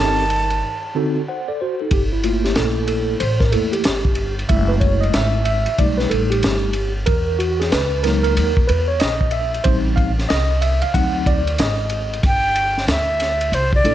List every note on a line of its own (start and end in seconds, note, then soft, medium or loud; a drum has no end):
0.00 0.59 G1 medium
0.00 0.96 D#3 medium
0.00 0.23 C4 medium
0.00 0.23 D#4 medium
0.00 0.23 G4 medium
0.00 0.24 A4 medium
0.00 0.97 A5 loud
0.30 ride medium
0.50 ride soft
0.95 1.20 D3 medium
0.95 1.20 C4 medium
0.95 1.20 D#4 medium
0.95 1.20 F#4 medium
0.95 1.21 A4 medium
1.28 1.47 C5 medium
1.28 1.47 F#5 medium
1.48 1.59 A4 medium
1.48 1.59 D5 medium
1.61 1.80 F#4 medium
1.61 1.79 C5 medium
1.80 2.11 D#4 soft
1.80 2.11 A4 medium
1.91 2.53 G1 medium
1.91 2.02 G4 medium
1.91 kick loud
1.91 ride medium
2.13 2.24 E4 medium
2.23 3.17 A3 medium
2.23 3.17 A#3 medium
2.23 3.17 E4 medium
2.23 2.43 F4 medium
2.23 ride medium
2.44 2.56 G4 medium
2.44 snare soft
2.44 ride soft
2.56 3.18 A#1 medium
2.56 2.87 A4 medium
2.56 snare loud
2.56 hi-hat pedal medium
2.56 ride medium
2.88 3.22 A4 medium
2.88 ride medium
3.20 3.51 A1 medium
3.20 3.41 C5 medium
3.20 ride medium
3.40 3.52 A#4 medium
3.40 kick medium
3.40 snare soft
3.52 3.84 E2 medium
3.52 3.82 A3 medium
3.52 3.82 A#3 soft
3.52 3.82 E4 medium
3.52 3.73 A4 medium
3.52 ride medium
3.72 4.33 G4 medium
3.72 ride soft
3.84 4.47 G1 loud
3.84 snare loud
3.84 hi-hat pedal medium
3.84 ride medium
4.05 kick medium
4.15 ride medium
4.39 ride soft
4.49 5.11 F#1 loud
4.49 5.42 G#3 medium
4.49 5.43 A3 medium
4.49 5.43 E4 medium
4.49 4.70 E5 loud
4.49 kick loud
4.49 ride medium
4.68 4.74 B4 medium
4.80 5.02 C#5 medium
4.80 kick loud
4.80 ride medium
5.01 5.13 D#5 medium
5.01 ride soft
5.14 5.64 G#1 loud
5.14 5.44 E5 loud
5.14 snare loud
5.14 hi-hat pedal medium
5.14 ride medium
5.45 5.79 E5 medium
5.45 ride medium
5.66 muted upright bass stroke soft
5.66 ride soft
5.78 6.09 B1 loud
5.78 6.72 G3 medium
5.78 6.72 A3 medium
5.78 6.73 D#4 medium
5.78 5.98 D5 medium
5.78 kick loud
5.78 ride medium
5.98 6.11 B4 medium
5.98 snare soft
6.10 6.42 A1 medium
6.10 6.31 A4 loud
6.10 ride medium
6.30 6.91 G4 medium
6.30 ride soft
6.43 7.05 G1 medium
6.43 snare loud
6.43 hi-hat pedal medium
6.43 ride medium
6.73 ride medium
7.06 7.69 E2 loud
7.06 7.40 A#4 loud
7.06 kick loud
7.06 ride medium
7.39 7.60 F#4 medium
7.39 ride medium
7.60 7.71 G#4 medium
7.60 snare soft
7.60 ride soft
7.71 8.34 C#2 loud
7.71 8.05 B4 loud
7.71 snare loud
7.71 hi-hat pedal medium
7.71 ride medium
8.03 8.50 F#3 medium
8.03 8.51 G#3 medium
8.03 8.51 A#3 medium
8.03 8.51 D#4 medium
8.03 8.22 A#4 loud
8.03 snare soft
8.03 ride medium
8.23 8.70 A#4 loud
8.23 ride soft
8.37 8.68 D#2 loud
8.37 ride medium
8.57 kick medium
8.68 9.00 E2 loud
8.68 8.87 B4 loud
8.68 ride medium
8.88 9.00 C#5 loud
9.00 9.63 A#1 loud
9.00 9.34 D#5 loud
9.00 snare loud
9.00 hi-hat pedal medium
9.00 ride medium
9.21 kick medium
9.31 9.66 E5 loud
9.31 ride medium
9.54 ride soft
9.64 10.27 A1 loud
9.64 10.11 G3 medium
9.64 10.12 C4 medium
9.64 10.12 D#4 medium
9.64 9.79 C5 loud
9.64 kick loud
9.64 ride medium
9.96 10.11 F5 loud
9.96 kick loud
9.96 ride medium
10.19 snare soft
10.19 ride soft
10.29 10.81 C2 medium
10.29 10.63 D#5 loud
10.29 snare loud
10.29 hi-hat pedal medium
10.29 ride medium
10.62 10.81 E5 loud
10.62 ride medium
10.82 10.95 F5 loud
10.82 muted upright bass stroke soft
10.82 ride soft
10.94 11.56 D2 loud
10.94 11.40 F#3 medium
10.94 11.41 C4 soft
10.94 11.41 D#4 medium
10.94 11.28 F#5 loud
10.94 kick loud
10.94 ride medium
11.26 11.60 D5 loud
11.26 kick loud
11.26 ride medium
11.47 ride soft
11.58 12.21 G#1 loud
11.58 12.20 D#5 medium
11.58 snare loud
11.58 hi-hat pedal medium
11.58 ride medium
11.90 ride medium
12.13 ride soft
12.23 12.85 G1 medium
12.23 12.86 G5 loud
12.23 kick loud
12.23 ride medium
12.55 ride medium
12.78 snare soft
12.87 13.49 D2 medium
12.87 13.56 E5 medium
12.87 snare loud
12.87 hi-hat pedal medium
12.87 ride medium
13.20 snare soft
13.20 ride medium
13.41 ride soft
13.52 13.83 C2 medium
13.52 13.74 C5 medium
13.52 ride medium
13.73 13.95 D5 loud
13.73 kick medium
13.84 13.95 A#1 medium
13.84 13.93 A3 medium
13.84 13.95 D4 medium
13.84 13.95 E4 medium
13.84 13.95 A4 medium
13.84 ride medium
13.91 13.95 A#3 medium